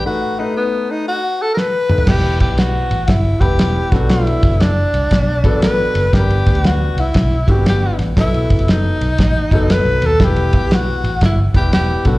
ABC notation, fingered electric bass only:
X:1
M:4/4
L:1/16
Q:"Swing" 1/4=118
K:Em
V:1 name="Fingered electric bass" clef=bass
z16 | E,,,2 B,,,4 A,,,2 G,,,2 E,,,4 B,,,2- | B,,,2 F,,,4 C,,2 B,,,2 A,,,4 F,,,2 | G,,,2 D,,4 C,,2 B,,,2 G,,,4 A,,,2 |
B,,,2 F,,,4 B,,,2 A,,,2 F,,,3 B,,, ^D,,2 | E,,,2 B,,,4 A,,,2 G,,,2 E,,,4 B,,,2 |]